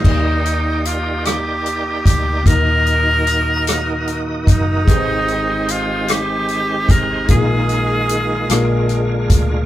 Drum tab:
CC |x-----|------|------|------|
HH |-xxxxx|xxxxxx|xxxxxx|xxxxxx|
SD |---r--|---r--|---r--|---r--|
BD |o----o|o----o|o----o|o----o|